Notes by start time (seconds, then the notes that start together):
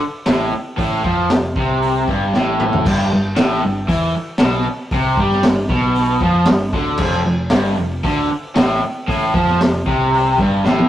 0.01 muted overdriven electric guitar stroke, muted picked electric bass stroke
0.26 A1 A2, snare, open hi-hat
0.52 muted overdriven electric guitar stroke, muted picked electric bass stroke
0.77 A1 A2, kick, open hi-hat
1.04 F2 F3, kick
1.30 F1 F2, snare, open hi-hat
1.56 C2 C3, kick
1.82 open hi-hat
2.08 G1 G2, kick
2.34 A1 A2, snare
2.60 mid tom
2.73 floor tom
2.85 G1 G2, kick, crash
3.12 G1 G2
3.36 A1 A2, snare, open hi-hat
3.63 G1 G2
3.88 E2 E3, kick, open hi-hat
4.15 muted overdriven electric guitar stroke, muted picked electric bass stroke
4.38 B1 B2, snare, open hi-hat
4.66 muted overdriven electric guitar stroke, muted picked electric bass stroke
4.91 C2 C3, kick, open hi-hat
5.17 G2 G3, kick
5.31 snare
5.43 G1 G2, snare, open hi-hat
5.69 B1 B2, kick
5.95 open hi-hat
6.21 F2 F3, kick
6.46 G1 G2, snare, open hi-hat
6.73 D2 D3, kick
6.98 F1 F2, kick, crash
7.25 F1 F2
7.50 G1 G2, snare, open hi-hat
7.78 F1 F2
8.04 D2 D3, kick, open hi-hat
8.31 muted overdriven electric guitar stroke, muted picked electric bass stroke
8.56 A1 A2, snare, open hi-hat
8.83 muted overdriven electric guitar stroke
9.08 A1 A2, kick, open hi-hat
9.34 F2 F3, kick
9.47 snare
9.61 F1 F2, snare, open hi-hat
9.86 C2 C3, kick
10.14 open hi-hat
10.38 G1 G2, kick
10.65 A1 A2, snare
10.79 high tom